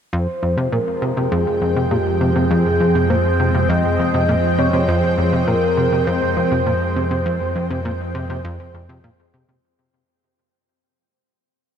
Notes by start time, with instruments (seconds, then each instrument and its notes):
0.13 synth drone F2, analog synth bass F2, analog synth pad F3, synth texture C4 C5, soft synth lead C5
0.29 analog synth pad G#3 C4
0.43 analog synth bass F2
0.57 analog synth bass C3
0.72 analog synth bass A#2, soft synth lead A#4
0.83 analog synth pad G5
1.02 analog synth bass C3
1.17 analog synth bass C3
1.32 analog synth bass F2, soft synth lead G#4
1.61 analog synth bass F2
1.76 analog synth bass C3
1.91 analog synth bass A#2, soft synth lead G4
2.21 analog synth bass C3
2.36 analog synth bass C3
2.50 analog synth bass F2, soft synth lead G#4
2.80 analog synth bass F2
2.95 analog synth bass C3
3.10 analog synth bass A#2, soft synth lead C5
3.40 analog synth bass C3
3.55 analog synth bass C3
3.69 analog synth bass F2, soft synth lead D#5
3.99 analog synth bass F2
4.14 analog synth bass C3
4.29 analog synth bass A#2
4.58 analog synth bass C3, soft synth lead C#5
4.73 analog synth bass C3
4.88 analog synth bass F2, soft synth lead C5
5.18 analog synth bass F2
5.33 analog synth bass C3
5.47 analog synth bass A#2, soft synth lead A#4
5.77 analog synth bass C3
5.92 analog synth bass C3
6.07 analog synth bass F2, soft synth lead C5
6.37 analog synth bass F2
6.52 analog synth bass C3
6.66 analog synth bass A#2
6.96 analog synth bass C3
7.11 analog synth bass C3
7.26 analog synth bass F2
7.56 analog synth bass F2
7.71 analog synth bass C3
7.85 analog synth bass A#2
8.15 analog synth bass C3
8.30 analog synth bass C3
8.45 analog synth bass F2
8.74 analog synth bass F2
8.89 analog synth bass C3
9.04 analog synth bass A#2
9.34 analog synth bass C3
9.49 analog synth bass C3